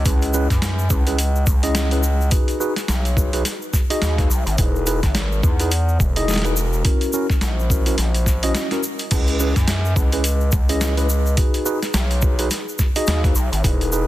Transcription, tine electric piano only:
0.06 C#4 E4 G#4 B4
0.34 C#4 E4 G#4 B4
0.90 C#4 E4 G#4 B4
1.07 C#4 E4 G#4 B4
1.63 C#4 E4 G#4 D#5
1.92 C#4 E4 G#4 B4
2.32 D#4 F#4 G#4 B4
2.60 D#4 F#4 G#4 B4
3.17 D#4 F#4 G#4 B4
3.33 D#4 F#4 G#4 B4
3.90 D#4 F#4 G#4 D#5
4.19 D#4 F#4 G#4 B4
4.59 D#4 E4 G#4 B4
4.87 D#4 E4 G#4 B4
5.43 D#4 E4 G#4 B4
5.60 D#4 E4 G#4 B4
6.17 D#4 E4 G#4 D#5
6.45 D#4 E4 G#4 B4
6.85 C#4 E4 F#4 A#4
7.13 C#4 E4 F#4 A#4
7.70 C#4 E4 F#4 A#4
7.86 C#4 E4 F#4 A#4
8.43 C#4 E4 F#4 D#5
8.72 C#4 E4 F#4 A#4
9.12 C#4 E4 G#4 B4
9.40 C#4 E4 G#4 B4
9.96 C#4 E4 G#4 B4
10.13 C#4 E4 G#4 B4
10.69 C#4 E4 G#4 D#5
10.97 C#4 E4 G#4 B4
11.38 D#4 F#4 G#4 B4
11.66 D#4 F#4 G#4 B4
12.23 D#4 F#4 G#4 B4
12.39 D#4 F#4 G#4 B4
12.96 D#4 F#4 G#4 D#5
13.24 D#4 F#4 G#4 B4
13.64 D#4 E4 G#4 B4
13.92 D#4 E4 G#4 B4

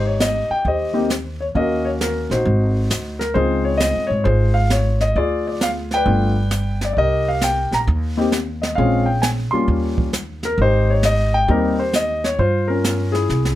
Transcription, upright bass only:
Already playing: G#1
0.50 muted upright bass stroke
0.65 D#2
1.55 D#2
2.30 A#1
2.45 G#1
2.91 D2
3.35 C#2
4.10 G#2
4.25 G#1
5.16 D2
6.06 G1
6.97 C2
7.71 A#1
7.87 D#2
8.78 A#1
9.53 muted upright bass stroke
9.68 D#2
10.58 G#1
11.48 D#2
12.39 G2
13.29 C2

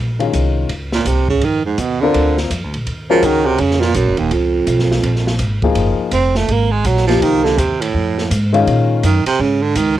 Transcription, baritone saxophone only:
0.93 A#2
1.07 C3
1.29 C#3
1.44 D#3
1.65 G#2
1.79 B2
2.01 D3
3.10 F3
3.24 D#3
3.45 C3
3.60 C#3
3.80 A#2
3.95 F#2
4.19 D#2
4.33 F2
6.13 C4
6.36 A3
6.51 A#3
6.71 G#3
6.86 F#3
7.07 F3
7.22 D#3
7.44 D3
7.58 C3
7.81 A2
9.05 D#3
9.26 C3
9.41 C#3
9.62 D3
9.76 D#3

